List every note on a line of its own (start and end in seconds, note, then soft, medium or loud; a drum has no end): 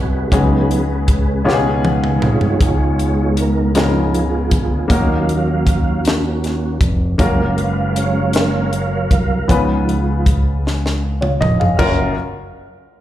0.00 0.29 C2 loud
0.00 0.33 B2 medium
0.00 0.27 G#3 medium
0.00 0.27 B3 medium
0.00 0.27 D#4 medium
0.00 0.27 F#4 medium
0.00 0.28 F#4 medium
0.00 0.27 G#4 medium
0.00 0.28 G#4 medium
0.00 0.30 B4 loud
0.30 1.42 C#2 loud
0.30 1.43 C#3 medium
0.30 0.82 F#3 medium
0.30 1.43 G#3 medium
0.30 0.82 B3 medium
0.30 1.43 B3 medium
0.30 2.18 C#4 medium
0.30 1.44 C#4 medium
0.30 0.82 D#4 medium
0.30 1.47 F#4 medium
0.30 2.18 G#4 medium
0.30 1.47 G#4 medium
0.30 2.28 B4 loud
0.30 kick loud
0.30 closed hi-hat medium
0.71 closed hi-hat medium
1.08 kick medium
1.08 closed hi-hat medium
1.44 2.19 C#2 loud
1.44 2.57 B2 medium
1.44 3.71 G#3 medium
1.44 3.71 B3 medium
1.44 3.71 C#4 medium
1.44 3.72 D#4 medium
1.44 3.72 F4 medium
1.44 1.53 G4 medium
1.49 snare medium
1.54 3.75 G#4 loud
1.85 high tom medium
2.04 mid tom medium
2.22 2.58 C2 loud
2.22 3.33 F4 medium
2.22 3.34 G#4 medium
2.22 3.42 C#5 loud
2.22 mid tom loud
2.41 floor tom loud
2.61 4.48 C#2 loud
2.61 kick loud
2.61 closed hi-hat medium
2.99 closed hi-hat medium
3.37 3.72 A#4 medium
3.37 closed hi-hat medium
3.74 4.86 C#3 medium
3.74 4.26 F3 medium
3.74 4.90 G#3 medium
3.74 4.86 B3 medium
3.74 4.90 B3 medium
3.74 4.87 C#4 medium
3.74 4.26 D#4 medium
3.74 4.90 F4 medium
3.74 4.86 F4 medium
3.74 4.87 G#4 loud
3.74 4.90 A#4 medium
3.74 snare loud
3.74 closed hi-hat medium
4.14 closed hi-hat medium
4.51 4.87 D2 medium
4.51 kick loud
4.51 closed hi-hat medium
4.88 6.77 D#2 medium
4.88 6.00 D#3 medium
4.88 6.01 F#3 medium
4.88 7.14 A#3 medium
4.88 6.78 A#3 medium
4.88 7.15 C#4 medium
4.88 6.78 C#4 medium
4.88 7.15 D#4 medium
4.88 7.15 F#4 medium
4.88 6.78 F#4 medium
4.88 7.16 A#4 medium
4.88 6.01 F5 medium
4.88 kick loud
4.88 closed hi-hat medium
5.29 closed hi-hat medium
5.67 kick loud
5.67 closed hi-hat medium
6.05 snare loud
6.05 closed hi-hat medium
6.44 snare soft
6.44 closed hi-hat medium
6.81 7.16 F1 loud
6.81 kick loud
6.81 closed hi-hat medium
7.18 9.06 F#1 loud
7.18 9.44 F#3 medium
7.18 8.32 G#3 medium
7.18 9.44 A#3 medium
7.18 9.44 C#4 medium
7.18 8.30 C#4 medium
7.18 9.45 F4 medium
7.18 9.45 F#4 medium
7.18 7.47 A#4 loud
7.18 9.45 A#4 medium
7.18 9.44 F5 medium
7.18 kick loud
7.18 closed hi-hat medium
7.49 7.57 A#4 medium
7.58 7.94 B4 loud
7.58 closed hi-hat medium
7.96 8.32 C#5 loud
7.96 closed hi-hat medium
8.33 8.68 G#3 soft
8.33 8.68 A#3 medium
8.33 8.68 C#4 medium
8.33 9.09 A#4 medium
8.33 9.12 C#5 loud
8.33 snare loud
8.33 closed hi-hat medium
8.73 closed hi-hat medium
9.10 9.46 C2 loud
9.10 9.49 A#4 loud
9.10 kick loud
9.10 closed hi-hat medium
9.47 11.36 C#2 medium
9.47 10.59 C#3 medium
9.47 9.99 F3 medium
9.47 10.59 G#3 medium
9.47 11.74 B3 medium
9.47 9.99 B3 medium
9.47 11.74 C#4 medium
9.47 10.00 D#4 medium
9.47 10.30 F4 medium
9.47 10.99 F4 medium
9.47 10.99 G#4 medium
9.47 10.99 B4 medium
9.47 kick loud
9.47 closed hi-hat medium
9.89 closed hi-hat medium
10.26 kick loud
10.26 closed hi-hat medium
10.67 snare medium
10.86 snare medium
11.21 11.39 F4 soft
11.21 11.39 C#5 medium
11.21 mid tom medium
11.41 11.75 F1 loud
11.41 11.58 D#5 medium
11.41 mid tom loud
11.60 11.96 G#4 medium
11.60 11.96 F5 medium
11.60 floor tom medium
11.77 12.14 F#1 medium
11.77 12.14 F#2 medium
11.77 12.14 F#3 medium
11.77 12.13 A#3 medium
11.77 12.13 C#4 medium
11.77 12.14 C#4 medium
11.77 12.14 F4 medium
11.77 12.14 F#4 medium
11.77 12.13 A#4 medium
11.77 12.14 A#4 medium
11.77 12.13 F5 medium
11.77 kick medium
11.77 crash medium